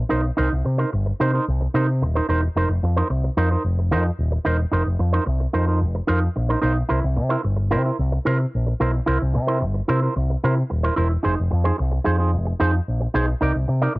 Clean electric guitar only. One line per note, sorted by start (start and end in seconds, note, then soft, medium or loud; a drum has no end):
0.09 0.24 D#4 medium
0.09 0.23 A#4 medium
0.09 0.22 C5 medium
0.23 muted clean electric guitar stroke soft
0.37 0.51 D#4 medium
0.37 0.51 A#4 medium
0.37 0.50 C5 medium
0.51 muted clean electric guitar stroke soft
0.64 muted clean electric guitar stroke soft
0.78 0.90 D#4 soft
0.78 0.90 A#4 medium
0.78 0.89 C5 medium
0.93 muted clean electric guitar stroke soft
1.06 muted clean electric guitar stroke soft
1.20 1.34 D#4 medium
1.20 1.33 A#4 medium
1.20 1.32 C5 medium
1.34 1.45 D#4 soft
1.34 1.45 A#4 medium
1.34 1.44 C5 medium
1.61 muted clean electric guitar stroke soft
1.74 1.88 D#4 medium
1.74 1.88 A#4 medium
1.74 1.87 C5 medium
2.02 muted clean electric guitar stroke soft
2.15 2.26 D#4 medium
2.15 2.26 A#4 medium
2.15 2.26 C5 medium
2.29 2.42 D#4 medium
2.29 2.43 A#4 medium
2.29 2.42 C5 medium
2.43 muted clean electric guitar stroke soft
2.56 2.70 D#4 medium
2.56 2.70 A#4 medium
2.56 2.70 C5 medium
2.71 muted clean electric guitar stroke soft
2.84 muted clean electric guitar stroke soft
2.96 3.08 D#4 soft
2.96 3.08 A#4 medium
2.96 3.07 C5 medium
3.10 muted clean electric guitar stroke soft
3.24 muted clean electric guitar stroke soft
3.37 3.51 D#4 medium
3.37 3.50 A#4 medium
3.37 3.50 C5 medium
3.51 3.62 D#4 soft
3.51 3.62 A#4 medium
3.51 3.62 C5 medium
3.79 muted clean electric guitar stroke soft
3.91 4.05 D#4 medium
3.91 4.05 A#4 medium
3.91 4.04 C5 medium
4.06 muted clean electric guitar stroke soft
4.32 muted clean electric guitar stroke soft
4.45 4.59 D#4 medium
4.45 4.59 A#4 medium
4.45 4.58 C5 medium
4.59 muted clean electric guitar stroke soft
4.71 4.86 D#4 medium
4.71 4.85 A#4 medium
4.71 4.84 C5 medium
4.85 muted clean electric guitar stroke soft
4.99 muted clean electric guitar stroke soft
5.13 5.25 D#4 soft
5.13 5.25 A#4 medium
5.13 5.24 C5 medium
5.26 muted clean electric guitar stroke soft
5.40 muted clean electric guitar stroke soft
5.53 5.67 D#4 medium
5.53 5.67 A#4 medium
5.53 5.66 C5 medium
5.67 5.79 D#4 soft
5.67 5.79 A#4 soft
5.67 5.79 C5 soft
5.95 muted clean electric guitar stroke medium
6.07 6.22 D#4 medium
6.07 6.21 A#4 medium
6.07 6.20 C5 medium
6.22 muted clean electric guitar stroke soft
6.36 muted clean electric guitar stroke soft
6.49 6.60 D#4 medium
6.49 6.61 A#4 medium
6.49 6.60 C5 medium
6.62 6.76 D#4 medium
6.62 6.75 A#4 medium
6.62 6.74 C5 medium
6.75 muted clean electric guitar stroke soft
6.89 7.04 E4 medium
6.89 7.01 A#4 medium
6.89 7.01 C5 medium
7.02 muted clean electric guitar stroke soft
7.16 muted clean electric guitar stroke soft
7.29 7.42 E4 medium
7.29 7.42 A#4 medium
7.29 7.41 C5 medium
7.43 muted clean electric guitar stroke soft
7.57 muted clean electric guitar stroke soft
7.71 7.85 E4 medium
7.71 7.84 A#4 medium
7.71 7.83 C5 medium
7.85 7.96 E4 soft
7.85 7.96 A#4 soft
8.12 muted clean electric guitar stroke soft
8.25 8.40 E4 medium
8.25 8.40 A#4 medium
8.25 8.39 C5 loud
8.40 muted clean electric guitar stroke medium
8.67 muted clean electric guitar stroke soft
8.80 8.94 E4 medium
8.80 8.93 A#4 medium
8.80 8.92 C5 medium
8.94 muted clean electric guitar stroke soft
9.06 9.21 E4 medium
9.06 9.20 A#4 medium
9.06 9.19 C5 medium
9.20 muted clean electric guitar stroke soft
9.34 muted clean electric guitar stroke soft
9.47 9.59 E4 soft
9.47 9.59 A#4 medium
9.47 9.59 C5 medium
9.60 muted clean electric guitar stroke soft
9.74 muted clean electric guitar stroke soft
9.88 10.02 E4 medium
9.88 10.01 A#4 medium
9.88 10.01 C5 medium
10.02 10.13 A#4 medium
10.16 muted clean electric guitar stroke soft
10.30 muted clean electric guitar stroke soft
10.43 10.57 E4 medium
10.43 10.56 A#4 medium
10.43 10.55 C5 medium
10.57 muted clean electric guitar stroke soft
10.70 muted clean electric guitar stroke soft
10.83 10.95 E4 soft
10.83 10.95 A#4 soft
10.83 10.95 C5 medium
10.96 11.11 E4 medium
10.96 11.10 A#4 medium
10.96 11.09 C5 medium
11.10 muted clean electric guitar stroke medium
11.23 11.38 D#4 medium
11.23 11.37 G#4 medium
11.23 11.36 C5 medium
11.37 muted clean electric guitar stroke soft
11.51 muted clean electric guitar stroke soft
11.64 11.77 D#4 soft
11.64 11.76 G#4 medium
11.64 11.76 C5 medium
11.78 muted clean electric guitar stroke soft
11.91 muted clean electric guitar stroke soft
12.04 12.19 D#4 medium
12.04 12.18 G#4 medium
12.04 12.17 C5 medium
12.18 12.31 D#4 soft
12.18 12.30 G#4 medium
12.18 12.30 C5 medium
12.45 muted clean electric guitar stroke soft
12.60 12.74 D#4 medium
12.60 12.73 G#4 medium
12.60 12.72 C5 loud
12.74 muted clean electric guitar stroke soft
13.01 muted clean electric guitar stroke soft
13.14 13.28 D#4 medium
13.14 13.28 G#4 medium
13.14 13.27 C5 medium
13.28 muted clean electric guitar stroke medium
13.41 13.55 D#4 medium
13.41 13.54 A#4 medium
13.41 13.53 D5 medium
13.55 muted clean electric guitar stroke soft
13.68 muted clean electric guitar stroke soft
13.82 13.94 D#4 medium
13.82 13.93 A#4 medium
13.82 13.93 D5 medium
13.95 muted clean electric guitar stroke soft